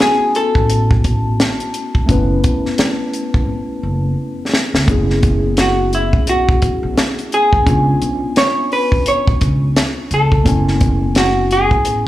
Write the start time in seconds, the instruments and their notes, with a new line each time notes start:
Already playing: tine electric piano A3 B3 C#4 E4 F#4
0.00 hollow-body jazz guitar G#4, vibraphone G#5, snare, closed hi-hat
0.35 hollow-body jazz guitar A4, closed hi-hat
0.55 upright bass A1, kick
0.70 closed hi-hat
0.91 kick
1.04 kick, closed hi-hat
1.40 snare, closed hi-hat
1.60 closed hi-hat
1.74 closed hi-hat
1.95 kick
2.06 upright bass F#1, tine electric piano A3 B3 C#4 E4, kick, closed hi-hat
2.11 tine electric piano B4
2.44 kick, closed hi-hat
2.66 snare
2.78 snare, closed hi-hat
3.14 closed hi-hat
3.34 upright bass G#1, kick
3.83 upright bass F#1
4.54 snare
4.74 upright bass C#2, snare
4.86 upright bass F#1, tine electric piano A3 B3 C#4 E4, kick, closed hi-hat
4.91 tine electric piano G#4
5.10 snare
5.23 kick, closed hi-hat
5.57 hollow-body jazz guitar F#4, snare, closed hi-hat
5.93 hollow-body jazz guitar E4, closed hi-hat
6.13 upright bass B1, kick
6.27 hollow-body jazz guitar F#4, closed hi-hat
6.49 kick
6.62 kick, closed hi-hat
6.83 upright bass B1
6.97 snare, closed hi-hat
7.19 closed hi-hat
7.32 hollow-body jazz guitar G#4, closed hi-hat
7.53 upright bass G#1, kick
7.64 upright bass C#2, tine electric piano B3 C#4 D4 F4, kick, closed hi-hat
7.69 tine electric piano G#5
8.01 upright bass B1, closed hi-hat
8.36 hollow-body jazz guitar C#5, snare, closed hi-hat
8.72 hollow-body jazz guitar B4, open hi-hat
8.92 kick
9.06 hollow-body jazz guitar C#5, closed hi-hat
9.27 kick
9.41 upright bass C#2, kick, closed hi-hat
9.76 snare, closed hi-hat
10.11 upright bass C#2, hollow-body jazz guitar A4, closed hi-hat
10.32 kick
10.44 upright bass F#1, tine electric piano A3 B3 C#4 E4, kick, closed hi-hat
10.48 tine electric piano G#5
10.68 snare
10.81 kick, closed hi-hat
11.15 hollow-body jazz guitar F#4, snare, closed hi-hat
11.51 hollow-body jazz guitar G#4, closed hi-hat
11.71 upright bass A1, kick
11.85 closed hi-hat